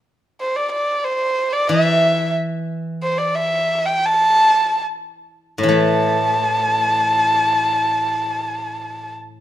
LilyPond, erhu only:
\new Staff \with { instrumentName = "Erhu" } { \time 2/4 \tempo 4 = 82 r8 c''16 d''16 d''8 c''8~ | c''16 d''16 e''4 r8 | r8 c''16 d''16 e''8. g''16 | a''4 r4 |
a''2~ | a''2 | }